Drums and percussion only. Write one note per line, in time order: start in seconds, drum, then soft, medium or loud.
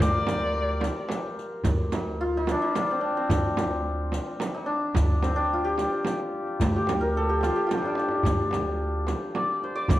0.00 riq medium
0.00 frame drum medium
0.27 riq medium
0.27 tombak tek medium
0.27 frame drum medium
0.53 tombak ka soft
0.81 riq medium
0.81 tombak tek medium
0.81 frame drum medium
1.08 riq soft
1.08 tombak tek medium
1.08 frame drum medium
1.36 riq soft
1.36 tombak ka soft
1.64 riq medium
1.64 tombak dum medium
1.64 frame drum medium
1.92 riq soft
1.92 tombak tek medium
1.92 frame drum medium
2.47 riq medium
2.47 tombak tek medium
2.47 frame drum medium
2.75 riq medium
2.75 tombak tek medium
2.75 frame drum medium
3.03 tombak ka soft
3.29 riq medium
3.29 tombak dum medium
3.29 frame drum medium
3.57 riq soft
3.57 tombak tek medium
3.57 frame drum medium
4.12 riq medium
4.12 tombak tek medium
4.12 frame drum medium
4.40 riq medium
4.40 tombak tek medium
4.40 frame drum medium
4.69 tombak ka soft
4.95 riq medium
4.95 frame drum loud
4.95 tombak dum medium
5.22 riq soft
5.22 tombak tek medium
5.22 frame drum medium
5.78 riq medium
5.78 tombak tek medium
5.78 frame drum medium
6.05 riq soft
6.05 tombak tek medium
6.05 frame drum medium
6.33 tombak ka soft
6.60 riq medium
6.60 tombak dum medium
6.60 frame drum medium
6.87 riq soft
6.87 tombak tek medium
6.87 frame drum medium
7.15 tombak ka soft
7.41 riq soft
7.41 tombak tek medium
7.41 frame drum medium
7.69 riq soft
7.69 tombak tek medium
7.69 frame drum medium
7.83 tombak ka medium
7.95 tombak tek medium
7.99 riq soft
8.09 tombak ka medium
8.23 riq medium
8.23 tombak dum medium
8.23 frame drum medium
8.51 riq soft
8.51 tombak tek medium
8.51 frame drum medium
9.07 riq soft
9.07 tombak tek medium
9.07 frame drum medium
9.36 frame drum medium
9.63 tombak ka soft
9.89 riq medium
9.89 tombak dum medium
9.89 frame drum medium